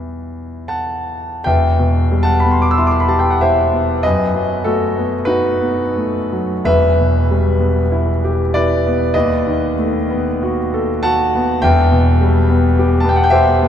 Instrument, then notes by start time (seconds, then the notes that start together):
grand piano
Already playing: E2 G3 B3 E4 E5
0.68 F#5 A5
1.44 E1 E2 E5 G5
1.79 B2
2.12 G3
2.23 F#5 A5
2.40 B5
2.45 B3
2.51 C6
2.62 D6
2.71 E6
2.78 E4 C6
2.87 D6
2.91 C6
3.00 B5
3.09 G4 A5
3.19 G5
3.30 F#5
3.41 E4 C5 E5
3.73 B3
4.03 F#2 B4 D#5
4.34 F#3
4.64 A3 F#4 A4
4.97 B3
5.25 D#4 F#4 B4
5.60 B3
5.96 A3
6.33 F#3
6.65 E1 E2 B4 E5
7.00 B2
7.31 G3
7.60 B3
7.92 E4
8.24 G4
8.54 E4 B4 D5
8.87 B3
9.14 D#2 B4 D#5
9.47 D#3
9.78 A3
10.10 B3
10.43 F#4
10.74 A4
11.03 F#4 F#5 A5
11.35 B3
11.62 E1 E2 E5 G5
11.92 B2
12.21 G3
12.49 B3
12.79 G4
13.00 B3 A5
13.09 G5
13.16 F#5
13.24 G5
13.30 G4 C5 E5
13.62 B3